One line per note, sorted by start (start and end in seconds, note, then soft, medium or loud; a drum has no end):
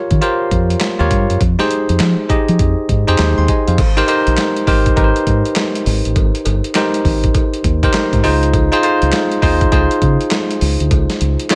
0.00 0.11 F4 medium
0.00 0.11 G4 medium
0.00 0.11 A#4 medium
0.00 0.11 C#5 loud
0.11 0.19 D#3 medium
0.11 kick medium
0.11 closed hi-hat medium
0.21 0.79 F4 medium
0.21 0.79 G4 medium
0.21 0.79 A#4 medium
0.21 0.79 C5 loud
0.21 closed hi-hat medium
0.51 0.74 F2 medium
0.51 kick medium
0.51 closed hi-hat medium
0.70 closed hi-hat medium
0.80 snare loud
0.80 clap medium
0.80 closed hi-hat medium
0.99 1.08 D#2 loud
0.99 1.40 F4 medium
0.99 1.40 G4 medium
0.99 1.41 A#4 medium
0.99 1.41 C#5 loud
1.11 1.25 G2 medium
1.11 kick medium
1.11 closed hi-hat medium
1.30 1.38 F#2 medium
1.30 closed hi-hat medium
1.41 1.55 F2 loud
1.41 kick loud
1.41 closed hi-hat medium
1.59 2.14 D#4 loud
1.59 2.14 G4 medium
1.59 2.15 G#4 medium
1.59 2.15 C5 loud
1.59 snare medium
1.71 closed hi-hat medium
1.89 1.98 F2 medium
1.89 closed hi-hat medium
2.00 2.14 F3 loud
2.00 snare loud
2.00 clap medium
2.00 closed hi-hat medium
2.29 2.86 D#4 medium
2.29 2.87 G4 medium
2.29 2.87 G#4 medium
2.29 2.87 D#5 medium
2.29 muted fingered electric bass stroke soft
2.29 kick medium
2.29 closed hi-hat medium
2.48 2.57 F3 medium
2.48 closed hi-hat soft
2.59 2.74 F2 medium
2.59 kick loud
2.59 closed hi-hat medium
2.89 3.03 G#2 loud
2.89 kick medium
2.89 closed hi-hat medium
3.07 3.16 F2 medium
3.07 3.49 D#4 medium
3.07 3.49 G4 medium
3.07 3.49 G#4 medium
3.07 3.19 C5 loud
3.07 closed hi-hat soft
3.18 3.33 D#2 medium
3.18 snare loud
3.18 clap medium
3.18 closed hi-hat medium
3.38 3.46 D#2 medium
3.38 3.48 G5 medium
3.38 3.48 C6 medium
3.48 3.67 D#5 medium
3.48 3.67 G#5 medium
3.48 kick medium
3.48 closed hi-hat medium
3.68 3.76 F2 medium
3.68 3.96 C5 medium
3.68 3.96 F5 medium
3.68 closed hi-hat medium
3.78 4.01 G#1 loud
3.78 kick loud
3.78 closed hi-hat medium
3.78 crash medium
3.78 cowbell medium
3.97 4.05 D#4 loud
3.97 4.05 G4 medium
3.97 4.06 A#4 medium
3.97 4.06 C5 loud
3.97 closed hi-hat medium
4.08 4.56 D#4 medium
4.08 4.57 G4 medium
4.08 4.57 A#4 medium
4.08 4.57 C5 loud
4.08 closed hi-hat medium
4.08 cowbell medium
4.27 4.35 A#1 medium
4.27 closed hi-hat medium
4.37 snare loud
4.37 clap medium
4.37 closed hi-hat medium
4.37 cowbell medium
4.56 closed hi-hat medium
4.67 4.90 G#1 medium
4.67 4.92 D#4 medium
4.67 4.92 G4 medium
4.67 4.92 A#4 medium
4.67 4.92 C5 medium
4.67 kick medium
4.67 open hi-hat medium
4.86 kick medium
4.86 closed hi-hat medium
4.96 5.11 G#1 medium
4.96 5.87 D#4 medium
4.96 5.87 G4 medium
4.96 5.87 A#4 medium
4.96 5.06 B4 medium
4.96 kick loud
4.96 closed hi-hat medium
4.96 cowbell medium
5.04 5.90 C5 medium
5.16 closed hi-hat medium
5.27 5.41 G#2 loud
5.27 kick medium
5.27 closed hi-hat medium
5.45 closed hi-hat soft
5.56 snare loud
5.56 clap medium
5.56 closed hi-hat medium
5.56 cowbell medium
5.75 closed hi-hat medium
5.86 6.00 G#1 loud
5.86 open hi-hat medium
6.05 6.13 A1 medium
6.05 closed hi-hat medium
6.16 6.30 G#1 loud
6.16 kick loud
6.16 closed hi-hat medium
6.16 cowbell medium
6.35 closed hi-hat medium
6.45 6.60 G1 medium
6.45 closed hi-hat medium
6.45 cowbell medium
6.64 closed hi-hat medium
6.75 7.56 D#4 medium
6.75 7.57 G4 medium
6.75 7.57 A#4 medium
6.75 7.57 C5 medium
6.75 snare loud
6.75 clap medium
6.75 closed hi-hat medium
6.75 cowbell medium
6.94 closed hi-hat medium
7.05 7.27 G#1 medium
7.05 kick medium
7.05 open hi-hat medium
7.24 kick medium
7.24 closed hi-hat medium
7.34 kick loud
7.34 closed hi-hat medium
7.34 cowbell medium
7.54 closed hi-hat medium
7.64 7.87 D#2 loud
7.64 kick medium
7.64 closed hi-hat medium
7.83 8.16 D#4 medium
7.83 8.16 G4 medium
7.83 8.16 A#4 medium
7.83 8.16 C5 loud
7.83 kick medium
7.83 closed hi-hat soft
7.93 snare loud
7.93 clap medium
7.93 closed hi-hat medium
7.93 cowbell medium
8.13 8.21 G#2 loud
8.13 kick medium
8.13 closed hi-hat medium
8.23 8.69 C#2 loud
8.23 8.61 D#4 loud
8.23 8.61 F4 medium
8.23 8.61 G#4 medium
8.23 8.61 C5 loud
8.23 open hi-hat medium
8.43 closed hi-hat medium
8.54 kick loud
8.54 closed hi-hat medium
8.54 cowbell medium
8.72 8.80 D#4 loud
8.72 8.81 F4 medium
8.72 8.81 G#4 medium
8.72 8.81 C5 loud
8.72 closed hi-hat medium
8.83 9.32 D#4 medium
8.83 9.32 F4 medium
8.83 9.32 G#4 medium
8.83 9.32 C5 medium
8.83 closed hi-hat medium
8.83 cowbell medium
9.02 9.10 C#2 medium
9.02 closed hi-hat medium
9.12 snare loud
9.12 clap medium
9.12 closed hi-hat medium
9.12 cowbell medium
9.31 closed hi-hat soft
9.42 9.65 D#2 medium
9.42 9.67 D#4 medium
9.42 9.67 F4 medium
9.42 9.67 G#4 medium
9.42 9.67 C5 medium
9.42 kick medium
9.42 open hi-hat medium
9.61 kick medium
9.61 closed hi-hat medium
9.72 9.87 C#2 medium
9.72 10.62 D#4 medium
9.72 10.62 F4 medium
9.72 10.62 G#4 medium
9.72 10.63 C5 medium
9.72 kick loud
9.72 closed hi-hat medium
9.72 cowbell medium
9.91 closed hi-hat medium
10.02 10.16 C#3 loud
10.02 kick medium
10.02 closed hi-hat medium
10.21 closed hi-hat soft
10.31 snare loud
10.31 clap medium
10.31 closed hi-hat medium
10.31 cowbell medium
10.51 closed hi-hat medium
10.61 10.76 C#2 loud
10.61 open hi-hat medium
10.80 10.89 D2 loud
10.80 closed hi-hat medium
10.91 11.05 C#2 loud
10.91 kick loud
10.91 closed hi-hat medium
10.91 cowbell medium
11.10 snare medium
11.10 closed hi-hat medium
11.21 11.35 C#2 medium
11.21 closed hi-hat medium
11.39 closed hi-hat medium
11.50 11.55 D#4 medium
11.50 11.55 F4 medium
11.50 11.55 G#4 medium
11.50 11.55 C#5 loud
11.50 snare loud
11.50 clap medium
11.50 closed hi-hat medium
11.50 cowbell medium